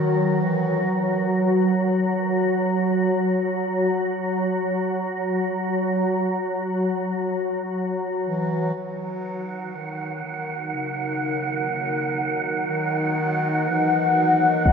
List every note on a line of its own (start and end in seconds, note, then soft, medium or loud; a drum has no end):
0.00 0.43 D#3 medium
0.00 8.76 F#3 medium
0.42 0.90 E3 medium
8.28 8.79 E3 medium
8.76 14.73 F#3 medium
8.76 9.77 F#3 medium
8.76 14.73 D#4 medium
8.76 14.73 F#5 medium
9.75 10.24 D#3 medium
9.75 14.73 A#4 medium
10.25 10.76 D#3 medium
10.74 11.72 C#3 medium
11.35 14.73 D#5 medium
11.72 12.39 C#3 medium
12.24 14.73 F#5 medium
12.70 13.70 D#3 medium
13.68 14.68 E3 medium
14.66 14.73 D#3 loud
14.66 impact medium